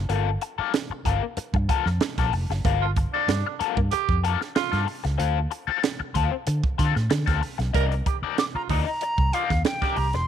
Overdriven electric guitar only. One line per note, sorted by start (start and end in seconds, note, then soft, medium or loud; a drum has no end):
0.09 0.27 A#3 medium
0.09 0.28 F4 medium
0.09 0.28 A4 loud
0.42 muted overdriven electric guitar stroke soft
0.58 0.72 A#3 soft
0.58 0.72 F4 soft
0.58 0.71 A4 medium
0.74 muted overdriven electric guitar stroke soft
0.91 muted overdriven electric guitar stroke soft
1.06 1.24 A#3 medium
1.06 1.22 F4 medium
1.06 1.21 A4 medium
1.22 muted overdriven electric guitar stroke soft
1.37 muted overdriven electric guitar stroke soft
1.55 muted overdriven electric guitar stroke soft
1.69 1.87 A#3 medium
1.69 1.87 F4 medium
1.69 1.85 A4 loud
1.87 muted overdriven electric guitar stroke medium
2.02 muted overdriven electric guitar stroke soft
2.19 2.32 A#3 medium
2.19 2.32 F4 medium
2.19 2.33 A4 medium
2.33 muted overdriven electric guitar stroke soft
2.51 muted overdriven electric guitar stroke soft
2.65 2.83 A#3 medium
2.65 2.83 F4 medium
2.65 2.84 A4 medium
2.97 muted overdriven electric guitar stroke soft
3.14 3.27 A#3 medium
3.14 3.27 F4 medium
3.14 3.26 A4 medium
3.29 muted overdriven electric guitar stroke soft
3.47 muted overdriven electric guitar stroke medium
3.60 3.78 A#3 medium
3.60 3.77 F4 medium
3.60 3.76 A4 medium
3.77 muted overdriven electric guitar stroke medium
3.93 muted overdriven electric guitar stroke soft
4.24 4.38 A#3 medium
4.24 4.38 F4 medium
4.24 4.39 A4 medium
4.41 muted overdriven electric guitar stroke soft
4.56 muted overdriven electric guitar stroke soft
4.72 4.86 A#3 medium
4.72 4.86 F4 medium
4.72 4.86 A4 medium
4.87 muted overdriven electric guitar stroke soft
5.04 muted overdriven electric guitar stroke soft
5.18 5.37 C4 medium
5.18 5.37 F4 loud
5.18 5.37 A4 loud
5.51 muted overdriven electric guitar stroke soft
5.67 5.81 C4 medium
5.67 5.81 F4 medium
5.67 5.80 A4 medium
5.83 muted overdriven electric guitar stroke soft
6.00 muted overdriven electric guitar stroke medium
6.15 6.33 C4 medium
6.15 6.31 F4 medium
6.15 6.30 A4 loud
6.31 muted overdriven electric guitar stroke soft
6.47 muted overdriven electric guitar stroke medium
6.78 6.93 C4 medium
6.78 6.93 F4 medium
6.78 6.93 A4 medium
6.95 muted overdriven electric guitar stroke medium
7.10 muted overdriven electric guitar stroke soft
7.26 7.40 C4 medium
7.26 7.41 F4 medium
7.26 7.41 A4 medium
7.41 muted overdriven electric guitar stroke soft
7.58 muted overdriven electric guitar stroke soft
7.73 7.92 D#4 medium
7.73 7.92 A#4 medium
7.73 7.92 D5 medium
8.06 muted overdriven electric guitar stroke soft
8.23 8.36 D#4 soft
8.23 8.36 A#4 soft
8.23 8.36 D5 medium
8.39 muted overdriven electric guitar stroke soft
8.56 muted overdriven electric guitar stroke soft
8.70 8.88 D#4 medium
8.70 8.87 A#4 medium
8.70 8.86 D5 loud
8.87 muted overdriven electric guitar stroke soft
9.02 muted overdriven electric guitar stroke soft
9.34 9.48 D#4 medium
9.34 9.48 A#4 medium
9.34 9.49 D5 medium
9.51 muted overdriven electric guitar stroke soft
9.66 muted overdriven electric guitar stroke soft
9.82 9.96 D#4 medium
9.82 9.97 A#4 medium
9.82 9.97 D5 medium
9.97 muted overdriven electric guitar stroke soft
10.14 muted overdriven electric guitar stroke soft